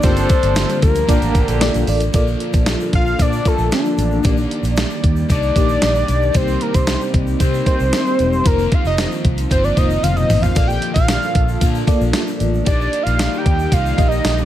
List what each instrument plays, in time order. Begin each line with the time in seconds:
Already playing: analog synth pad G3
0.02 fingered electric bass G1, overdriven electric guitar G2 D3 G3, analog synth pad D3 F3 A#3 F4, horn section F3 D4 A4, fm electric piano A3 D4 F4 G4 D5, analog synth lead C5, kick, closed hi-hat, shaker
0.09 fm electric piano A#3
0.17 closed hi-hat, shaker
0.29 analog synth lead C5, kick, closed hi-hat, shaker
0.42 fingered electric bass G1, closed hi-hat, shaker
0.55 overdriven electric guitar G2 D3 G3, snare, closed hi-hat, tambourine, shaker
0.69 closed hi-hat, shaker
0.82 fingered electric bass D2, analog synth lead A#4, kick, closed hi-hat, shaker
0.95 closed hi-hat, shaker
1.07 fingered electric bass A#1, overdriven electric guitar A#2 F3, horn section D3 A#3 G4, fm electric piano A#3 D4 F4 D5 A5, kick, closed hi-hat, shaker
1.11 overdriven electric guitar A#3
1.22 fingered electric bass A1, closed hi-hat, shaker
1.35 fingered electric bass A1, kick, closed hi-hat, shaker
1.48 fingered electric bass A#1, analog synth lead A4, closed hi-hat, shaker
1.61 fm electric piano A#3 D4 F4 A4 D5, snare, closed hi-hat, tambourine, shaker
1.74 fingered electric bass A#1, closed hi-hat, shaker
1.87 fingered electric bass A1, fm electric piano A#3 D4 F4 A4 D5, open hi-hat, shaker
2.00 closed hi-hat, shaker
2.12 fingered electric bass A#1, overdriven electric guitar A#2 F3, analog synth pad D3 F3 A#3 F4 A4, fm electric piano A#3 F4 A4 D5, kick, closed hi-hat, shaker
2.16 overdriven electric guitar A#3
2.27 shaker
2.40 closed hi-hat
2.53 fingered electric bass A#1, kick, closed hi-hat, shaker
2.66 snare, closed hi-hat, shaker
2.80 shaker
2.93 fingered electric bass A#1, analog synth lead F5, kick, closed hi-hat
3.06 shaker
3.19 overdriven electric guitar A#2 F3 A#3, fingered electric bass A#2, analog synth lead D5, kick, closed hi-hat, shaker
3.32 shaker
3.45 overdriven electric guitar F3 A#3, fm electric piano A#3 F4 A4 D5, analog synth lead A4, kick, closed hi-hat, shaker
3.58 fingered electric bass A#1, shaker
3.72 analog synth lead D4, snare, closed hi-hat, shaker
3.85 shaker
3.98 fingered electric bass A1, closed hi-hat, shaker
4.11 shaker
4.23 fingered electric bass A#1, overdriven electric guitar D#3 A#3, analog synth pad D#3 G3 G4 D5, fm electric piano D#3 A#3 G4 D5, kick, closed hi-hat, shaker
4.37 shaker
4.51 closed hi-hat
4.63 fingered electric bass A#1, closed hi-hat, shaker
4.77 snare, closed hi-hat, shaker
4.90 shaker
5.04 fingered electric bass D#2, kick, closed hi-hat
5.16 shaker
5.29 fingered electric bass C2, overdriven electric guitar D#3 A#3 D#4, analog synth lead D5, kick, closed hi-hat, shaker
5.42 shaker
5.55 fingered electric bass A#1, fm electric piano A#3 D#4 G4 D5, overdriven electric guitar A#3 D#4, kick, closed hi-hat, shaker
5.69 shaker
5.82 fingered electric bass A#1, snare, closed hi-hat, shaker
5.95 shaker
6.08 fingered electric bass B1, closed hi-hat, shaker
6.22 shaker
6.33 fingered electric bass C2, overdriven electric guitar C3 G3, fm electric piano A#3 D#4 G4 C5, analog synth pad C4, analog synth lead C5, kick, closed hi-hat, shaker
6.37 overdriven electric guitar C4
6.48 shaker
6.61 analog synth lead A#4, closed hi-hat
6.74 fingered electric bass C2, analog synth lead C5, kick, closed hi-hat, shaker
6.87 snare, closed hi-hat, shaker
7.01 shaker
7.14 fingered electric bass C2, kick, closed hi-hat
7.27 shaker
7.39 overdriven electric guitar C3 G3 C4, fingered electric bass C3, analog synth lead C5, kick, closed hi-hat, shaker
7.54 shaker
7.66 overdriven electric guitar G3 C4, fm electric piano A#3 D#4 G4 C5, kick, closed hi-hat, shaker
7.80 fingered electric bass C2, shaker
7.93 snare, closed hi-hat, shaker
8.06 shaker
8.19 fingered electric bass E1, closed hi-hat, shaker
8.33 shaker
8.44 fingered electric bass F1, overdriven electric guitar F3 C4, analog synth pad F3 A#3 F4, fm electric piano A#3 D#4 F4 C5, analog synth lead A#4, kick, closed hi-hat, shaker
8.48 overdriven electric guitar F4
8.59 shaker
8.72 analog synth lead F5, kick, closed hi-hat
8.85 fingered electric bass F1, analog synth lead D#5, shaker
8.98 snare, closed hi-hat, tambourine, shaker
9.12 shaker
9.25 fingered electric bass C2, kick, closed hi-hat
9.38 closed hi-hat, shaker
9.49 fingered electric bass G1, overdriven electric guitar F3 C4 F4, analog synth lead C5, kick, closed hi-hat, shaker
9.64 analog synth lead D5, shaker
9.76 fingered electric bass F1, fm electric piano A#3 D#4 F4 C5, overdriven electric guitar C4 F4, analog synth lead D#5, kick, closed hi-hat, shaker
9.90 shaker
10.03 fingered electric bass F1, analog synth lead F5, closed hi-hat, high tom, shaker
10.16 analog synth lead D#5, mid tom, shaker
10.29 fingered electric bass A1, mid tom, open hi-hat, shaker
10.42 analog synth lead F5, floor tom, shaker
10.55 fingered electric bass A#1, overdriven electric guitar A#2 F3, analog synth pad D3 A4, fm electric piano A#3 F4 A4 D5, analog synth lead F5, kick, closed hi-hat, shaker
10.59 overdriven electric guitar A#3
10.67 analog synth lead G5, shaker
10.82 closed hi-hat
10.94 fingered electric bass A#1, analog synth lead F5, kick, closed hi-hat, shaker
11.08 snare, closed hi-hat, tambourine, shaker
11.22 shaker
11.35 fingered electric bass A#1, kick, closed hi-hat
11.48 shaker
11.60 overdriven electric guitar A#2 F3 A#3, fingered electric bass A#2, kick, closed hi-hat, shaker
11.75 shaker
11.86 overdriven electric guitar F3 A#3, fm electric piano A#3 F4 A4 D5, kick, closed hi-hat, shaker
12.01 fingered electric bass A#1, shaker
12.13 snare, closed hi-hat, tambourine, shaker
12.27 shaker
12.40 fingered electric bass A1, closed hi-hat, shaker
12.54 shaker
12.65 fingered electric bass A#1, overdriven electric guitar D#3 A#3, analog synth pad D#3 G3 D#4 G4, fm electric piano A#3 D#4 G4 D5, analog synth lead D5, kick, closed hi-hat, shaker
12.70 overdriven electric guitar D#4
12.81 shaker
12.93 closed hi-hat
13.03 fingered electric bass A#1, analog synth lead F5, closed hi-hat, shaker
13.19 snare, closed hi-hat, tambourine, shaker
13.33 shaker
13.38 analog synth lead G5
13.46 fingered electric bass D#2, kick, closed hi-hat
13.59 shaker
13.71 fingered electric bass C2, overdriven electric guitar D#3 A#3 D#4, analog synth lead F5, kick, closed hi-hat, shaker
13.86 shaker
13.97 fingered electric bass A#1, fm electric piano A#3 D#4 G4 D#5, overdriven electric guitar A#3 D#4, kick, closed hi-hat, shaker
14.08 analog synth lead D#5, shaker
14.25 fingered electric bass A#1, snare, closed hi-hat, tambourine, shaker
14.38 shaker